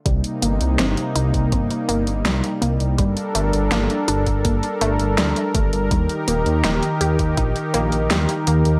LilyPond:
<<
  \new Staff \with { instrumentName = "Analog synth pad" } { \time 4/4 \key c \dorian \tempo 4 = 82 << { <c g bes>1 | <d' a'>1 | <ees ees' g'>1 | } \\ { ees'1 | bes'1~ | bes'1 | } >> }
  \new Staff \with { instrumentName = "Synth arpeggio sound" } { \time 4/4 \key c \dorian g8 bes8 c'8 ees'8 c'8 bes8 g8 bes8 | g8 a8 bes8 d'8 bes8 a8 g8 a8 | g8 bes8 ees'8 g'8 ees'8 bes8 g8 bes8 | }
  \new Staff \with { instrumentName = "Detuned saw bass" } { \clef bass \time 4/4 \key c \dorian c,16 r16 g,,16 c,16 g,,16 r16 c,16 c,16 g,,16 r16 g,,16 g,,16 c,16 r16 c,16 c,16 | g,,16 r16 g,,16 g,,16 g,,16 r16 g,,16 g,,16 g,,16 r16 g,,16 g,,16 d,16 r16 g,,16 g,,16 | ees,16 r16 ees,,16 ees,16 ees,,16 r16 ees,16 ees,16 bes,,16 r16 bes,,16 bes,,16 ees,16 r16 ees,16 ees,16 | }
  \new DrumStaff \with { instrumentName = "Drums" } \drummode { \time 4/4 <hh bd>16 hh16 hh16 hh16 <hh sn>16 hh16 hh16 <hh bd>16 <hh bd>16 hh16 hh16 hh16 <hh sn>16 hh16 hh16 hh16 | <hh bd>16 hh16 hh16 hh16 <hh sn>16 hh16 hh16 <hh bd>16 <hh bd>16 hh16 hh16 hh16 <hh sn>16 hh16 <hh bd>16 hh16 | <hh bd>16 hh16 hh16 hh16 <hh sn>16 hh16 hh16 <hh bd>16 <hh bd>16 hh16 hh16 hh16 <hh sn>16 hh16 hh16 hh16 | }
>>